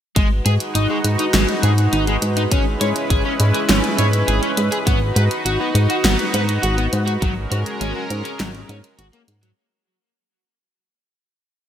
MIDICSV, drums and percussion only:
0, 0, Header, 1, 2, 480
1, 0, Start_track
1, 0, Key_signature, 5, "minor"
1, 0, Tempo, 588235
1, 133, Time_signature, 4, 2, 24, 8
1, 9532, End_track
2, 0, Start_track
2, 0, Title_t, "Drums"
2, 132, Note_on_c, 9, 36, 116
2, 132, Note_on_c, 9, 42, 80
2, 214, Note_off_c, 9, 36, 0
2, 214, Note_off_c, 9, 42, 0
2, 373, Note_on_c, 9, 42, 81
2, 454, Note_off_c, 9, 42, 0
2, 492, Note_on_c, 9, 42, 53
2, 574, Note_off_c, 9, 42, 0
2, 613, Note_on_c, 9, 42, 80
2, 695, Note_off_c, 9, 42, 0
2, 853, Note_on_c, 9, 42, 82
2, 934, Note_off_c, 9, 42, 0
2, 972, Note_on_c, 9, 42, 54
2, 1054, Note_off_c, 9, 42, 0
2, 1092, Note_on_c, 9, 38, 119
2, 1092, Note_on_c, 9, 42, 82
2, 1174, Note_off_c, 9, 38, 0
2, 1174, Note_off_c, 9, 42, 0
2, 1212, Note_on_c, 9, 42, 37
2, 1294, Note_off_c, 9, 42, 0
2, 1332, Note_on_c, 9, 42, 81
2, 1414, Note_off_c, 9, 42, 0
2, 1453, Note_on_c, 9, 42, 52
2, 1535, Note_off_c, 9, 42, 0
2, 1573, Note_on_c, 9, 42, 78
2, 1655, Note_off_c, 9, 42, 0
2, 1693, Note_on_c, 9, 42, 37
2, 1774, Note_off_c, 9, 42, 0
2, 1813, Note_on_c, 9, 42, 80
2, 1894, Note_off_c, 9, 42, 0
2, 1932, Note_on_c, 9, 42, 53
2, 2014, Note_off_c, 9, 42, 0
2, 2052, Note_on_c, 9, 42, 80
2, 2053, Note_on_c, 9, 36, 123
2, 2134, Note_off_c, 9, 36, 0
2, 2134, Note_off_c, 9, 42, 0
2, 2293, Note_on_c, 9, 42, 82
2, 2374, Note_off_c, 9, 42, 0
2, 2413, Note_on_c, 9, 42, 54
2, 2495, Note_off_c, 9, 42, 0
2, 2533, Note_on_c, 9, 36, 103
2, 2533, Note_on_c, 9, 42, 82
2, 2614, Note_off_c, 9, 36, 0
2, 2614, Note_off_c, 9, 42, 0
2, 2772, Note_on_c, 9, 42, 82
2, 2853, Note_off_c, 9, 42, 0
2, 2893, Note_on_c, 9, 42, 53
2, 2974, Note_off_c, 9, 42, 0
2, 3013, Note_on_c, 9, 38, 123
2, 3013, Note_on_c, 9, 42, 83
2, 3095, Note_off_c, 9, 38, 0
2, 3095, Note_off_c, 9, 42, 0
2, 3133, Note_on_c, 9, 42, 37
2, 3214, Note_off_c, 9, 42, 0
2, 3252, Note_on_c, 9, 42, 82
2, 3334, Note_off_c, 9, 42, 0
2, 3373, Note_on_c, 9, 42, 53
2, 3455, Note_off_c, 9, 42, 0
2, 3493, Note_on_c, 9, 42, 82
2, 3575, Note_off_c, 9, 42, 0
2, 3613, Note_on_c, 9, 42, 38
2, 3694, Note_off_c, 9, 42, 0
2, 3732, Note_on_c, 9, 42, 82
2, 3814, Note_off_c, 9, 42, 0
2, 3853, Note_on_c, 9, 42, 54
2, 3934, Note_off_c, 9, 42, 0
2, 3972, Note_on_c, 9, 36, 125
2, 3973, Note_on_c, 9, 42, 79
2, 4054, Note_off_c, 9, 36, 0
2, 4054, Note_off_c, 9, 42, 0
2, 4213, Note_on_c, 9, 42, 83
2, 4295, Note_off_c, 9, 42, 0
2, 4333, Note_on_c, 9, 42, 52
2, 4415, Note_off_c, 9, 42, 0
2, 4454, Note_on_c, 9, 42, 80
2, 4535, Note_off_c, 9, 42, 0
2, 4693, Note_on_c, 9, 42, 78
2, 4775, Note_off_c, 9, 42, 0
2, 4813, Note_on_c, 9, 42, 51
2, 4895, Note_off_c, 9, 42, 0
2, 4933, Note_on_c, 9, 38, 124
2, 4933, Note_on_c, 9, 42, 80
2, 5015, Note_off_c, 9, 38, 0
2, 5015, Note_off_c, 9, 42, 0
2, 5053, Note_on_c, 9, 42, 36
2, 5135, Note_off_c, 9, 42, 0
2, 5173, Note_on_c, 9, 42, 82
2, 5255, Note_off_c, 9, 42, 0
2, 5294, Note_on_c, 9, 42, 52
2, 5376, Note_off_c, 9, 42, 0
2, 5412, Note_on_c, 9, 42, 80
2, 5494, Note_off_c, 9, 42, 0
2, 5533, Note_on_c, 9, 42, 37
2, 5615, Note_off_c, 9, 42, 0
2, 5653, Note_on_c, 9, 42, 79
2, 5735, Note_off_c, 9, 42, 0
2, 5774, Note_on_c, 9, 42, 53
2, 5856, Note_off_c, 9, 42, 0
2, 5893, Note_on_c, 9, 36, 123
2, 5893, Note_on_c, 9, 42, 76
2, 5974, Note_off_c, 9, 36, 0
2, 5975, Note_off_c, 9, 42, 0
2, 6133, Note_on_c, 9, 42, 77
2, 6215, Note_off_c, 9, 42, 0
2, 6253, Note_on_c, 9, 42, 52
2, 6334, Note_off_c, 9, 42, 0
2, 6373, Note_on_c, 9, 42, 76
2, 6455, Note_off_c, 9, 42, 0
2, 6613, Note_on_c, 9, 42, 76
2, 6695, Note_off_c, 9, 42, 0
2, 6733, Note_on_c, 9, 42, 50
2, 6815, Note_off_c, 9, 42, 0
2, 6853, Note_on_c, 9, 38, 119
2, 6853, Note_on_c, 9, 42, 78
2, 6935, Note_off_c, 9, 38, 0
2, 6935, Note_off_c, 9, 42, 0
2, 6974, Note_on_c, 9, 42, 36
2, 7055, Note_off_c, 9, 42, 0
2, 7094, Note_on_c, 9, 42, 81
2, 7175, Note_off_c, 9, 42, 0
2, 7214, Note_on_c, 9, 42, 50
2, 7295, Note_off_c, 9, 42, 0
2, 7333, Note_on_c, 9, 42, 74
2, 7415, Note_off_c, 9, 42, 0
2, 7452, Note_on_c, 9, 42, 36
2, 7534, Note_off_c, 9, 42, 0
2, 7573, Note_on_c, 9, 42, 75
2, 7655, Note_off_c, 9, 42, 0
2, 7694, Note_on_c, 9, 42, 54
2, 7776, Note_off_c, 9, 42, 0
2, 9532, End_track
0, 0, End_of_file